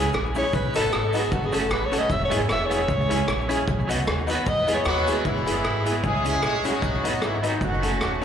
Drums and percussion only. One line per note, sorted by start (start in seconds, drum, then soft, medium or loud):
0.13 cross-stick loud
0.13 cabasa medium
0.35 open hi-hat soft
0.35 cabasa medium
0.53 kick loud
0.53 hi-hat pedal medium
0.53 cabasa medium
0.74 closed hi-hat loud
0.74 cabasa medium
0.92 cross-stick loud
0.92 cabasa medium
1.13 closed hi-hat medium
1.13 cabasa medium
1.32 kick loud
1.32 cabasa medium
1.52 closed hi-hat medium
1.52 cabasa medium
1.70 cross-stick loud
1.70 cabasa medium
1.93 closed hi-hat medium
1.93 cabasa medium
2.10 kick loud
2.10 cabasa medium
2.31 closed hi-hat loud
2.31 cabasa medium
2.49 cross-stick loud
2.49 cabasa medium
2.71 closed hi-hat medium
2.71 cabasa medium
2.88 kick loud
2.88 cabasa medium
3.11 closed hi-hat medium
3.11 cabasa medium
3.28 cross-stick loud
3.28 cabasa medium
3.50 closed hi-hat medium
3.50 cabasa medium
3.68 kick loud
3.68 cabasa medium
3.90 closed hi-hat loud
3.90 cabasa medium
4.07 cross-stick loud
4.07 cabasa medium
4.28 closed hi-hat medium
4.28 cabasa medium
4.46 kick loud
4.46 cabasa medium
4.68 closed hi-hat medium
4.68 cabasa medium
4.85 cross-stick loud
4.85 cabasa medium
5.07 closed hi-hat medium
5.07 cabasa medium
5.25 kick loud
5.25 cabasa medium
5.47 closed hi-hat loud
5.47 cabasa medium
5.64 cross-stick loud
5.64 cabasa soft
5.86 closed hi-hat medium
5.86 cabasa medium
6.04 kick loud
6.04 cabasa medium
6.25 closed hi-hat medium
6.25 cabasa medium
6.43 cross-stick loud
6.43 cabasa medium
6.64 closed hi-hat medium
6.64 cabasa medium
6.82 kick loud
6.82 cabasa medium
7.05 closed hi-hat loud
7.05 cabasa medium
7.22 cross-stick loud
7.22 cabasa medium
7.43 closed hi-hat medium
7.43 cabasa medium
7.61 kick loud
7.61 cabasa medium
7.83 closed hi-hat medium
7.83 cabasa medium
8.01 cross-stick loud
8.01 cabasa medium